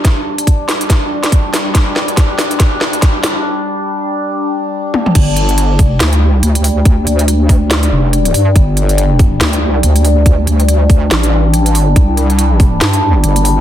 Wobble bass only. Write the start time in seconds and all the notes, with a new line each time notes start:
5.15 G1
5.74 F#1
6.00 D2
6.43 D2
7.07 D2
7.92 F1
8.34 G2
8.56 G1
9.41 D2
9.83 D2
10.47 D2
11.11 A1
11.70 G#1
11.96 C2
12.81 G2
13.24 G1